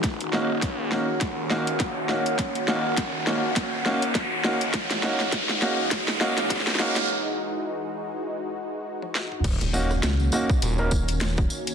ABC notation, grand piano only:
X:1
M:4/4
L:1/16
Q:"Swing 16ths" 1/4=102
K:Ebm
V:1 name="Grand piano"
z2 [B,DEG] z3 [B,DEG] z3 [B,DEG] z3 [B,DEG] z | z2 [B,DEG] z3 [B,DEG] z3 [B,DEG] z3 [B,DEG] z | z2 [B,D^D^F] z3 [B,_D^DF] z3 [B,_D^DF] z3 [B,_D^DF] z | z16 |
z2 [B,DEG] z3 [B,DEG] z2 [B,DEB] z6 |]